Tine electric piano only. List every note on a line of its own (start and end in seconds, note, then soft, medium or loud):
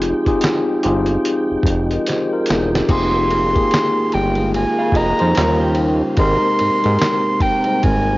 0.00 0.26 C4 medium
0.00 0.27 D#4 medium
0.00 0.27 F4 medium
0.00 0.25 G4 medium
0.00 0.28 G#4 loud
0.25 0.72 C4 medium
0.25 0.72 D#4 medium
0.25 0.73 F4 medium
0.25 0.71 G4 medium
0.25 0.73 G#4 medium
0.83 1.50 C4 medium
0.83 1.51 D#4 medium
0.83 1.51 F4 medium
0.83 1.50 G4 medium
0.83 1.51 G#4 medium
1.92 2.07 A#4 medium
1.92 2.07 D#5 medium
2.08 2.31 G4 medium
2.08 2.30 C5 medium
2.33 2.48 F4 medium
2.33 2.48 A#4 medium
2.49 2.72 D#4 medium
2.49 2.72 G#4 medium
2.74 3.12 C4 medium
2.74 2.87 G4 medium
2.88 3.37 A#3 medium
2.88 3.37 D#4 medium
2.88 3.38 F4 medium
2.88 3.37 G4 loud
2.88 3.38 G#4 loud
3.54 4.14 A#3 medium
3.54 4.15 D#4 medium
3.54 4.15 F4 medium
3.54 4.14 G4 medium
3.54 4.15 G#4 medium
4.37 5.35 G#3 medium
4.37 5.36 A#3 medium
4.37 5.35 D#4 medium
4.37 5.36 F4 medium
4.37 5.37 G#4 medium
5.36 5.43 F#3 medium
5.36 6.04 C#4 medium
5.36 6.05 D#4 medium
5.36 6.05 F4 medium
5.36 6.05 C5 medium
5.42 6.07 G3 medium
6.18 6.66 G#3 medium
6.18 6.67 C4 medium
6.18 6.67 D#4 medium
6.18 6.67 G4 medium
6.18 6.68 A#4 loud
6.83 7.42 G#3 medium
6.83 7.43 C4 medium
6.83 7.43 D#4 medium
6.83 7.43 G4 medium
6.83 7.44 A#4 medium
7.65 8.18 G3 medium
7.65 8.18 G#3 medium
7.65 8.18 C4 medium
7.65 8.18 D#4 medium
7.65 8.18 C5 medium